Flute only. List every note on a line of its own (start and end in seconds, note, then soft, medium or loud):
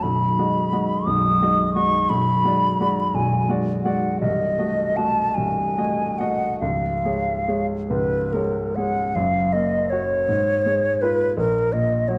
0.03 1.08 B5 medium
1.06 1.73 D#6 medium
1.74 2.11 C#6 medium
2.09 3.16 B5 medium
3.15 3.50 G#5 medium
3.84 4.18 F#5 medium
4.20 4.98 D#5 medium
4.97 5.36 A5 medium
5.34 6.20 G#5 medium
6.19 6.60 F#5 medium
6.60 7.67 F5 medium
7.89 8.34 B4 medium
8.33 8.77 A#4 soft
8.76 9.17 F#5 medium
9.15 9.54 F5 medium
9.53 9.92 D#5 medium
9.90 11.03 C#5 medium
11.02 11.37 B4 medium
11.37 11.74 A#4 medium
11.73 12.10 D#5 medium
12.08 12.18 C#5 medium